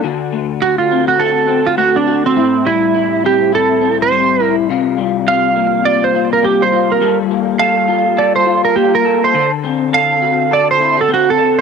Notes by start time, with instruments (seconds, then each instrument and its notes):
Already playing: clean electric guitar A4
0.04 clean electric guitar D3 F#4
0.32 clean electric guitar A3
0.62 clean electric guitar F#4, electric slide guitar F#4
0.78 electric slide guitar F4
0.91 clean electric guitar C4
1.08 electric slide guitar F#4
1.20 clean electric guitar F#4, electric slide guitar A4
1.48 clean electric guitar C4
1.66 electric slide guitar F4
1.77 clean electric guitar A3, electric slide guitar F#4
1.96 electric slide guitar D4
2.07 clean electric guitar F#4
2.26 electric slide guitar C4
2.36 clean electric guitar A2 E4
2.65 clean electric guitar G3, electric slide guitar E4
2.94 clean electric guitar E4
3.24 clean electric guitar C4, electric slide guitar G4
3.52 clean electric guitar E4, electric slide guitar A4
3.81 clean electric guitar C4
4.02 electric slide guitar C5
4.11 clean electric guitar G3
4.40 clean electric guitar E4, electric slide guitar A#4
4.70 clean electric guitar C3 F4
4.98 clean electric guitar G3
5.27 clean electric guitar F4, electric slide guitar F5
5.56 clean electric guitar A#3
5.85 clean electric guitar F4, electric slide guitar D5
6.04 electric slide guitar C5
6.15 clean electric guitar A#3
6.33 electric slide guitar A#4
6.43 clean electric guitar G3, electric slide guitar G4
6.62 electric slide guitar C5
6.73 clean electric guitar F4
6.92 electric slide guitar A#4
7.01 clean electric guitar G3 A4
7.31 clean electric guitar A#3
7.59 clean electric guitar A4, electric slide guitar F5
7.88 clean electric guitar F4
8.17 clean electric guitar A4, electric slide guitar D5
8.36 electric slide guitar C5
8.46 clean electric guitar F4
8.65 electric slide guitar A#4
8.76 clean electric guitar A#3, electric slide guitar G4
8.95 electric slide guitar A#4
9.05 clean electric guitar A4
9.24 electric slide guitar C5
9.34 clean electric guitar D3 A4
9.64 clean electric guitar C4
9.93 clean electric guitar A4, electric slide guitar F5
10.22 clean electric guitar F#4
10.51 clean electric guitar A4, electric slide guitar D5
10.71 electric slide guitar C5
10.80 clean electric guitar E4
10.97 clean electric guitar F#4
11.01 electric slide guitar A4
11.08 clean electric guitar C4
11.14 electric slide guitar F#4
11.30 electric slide guitar A4
11.38 clean electric guitar A4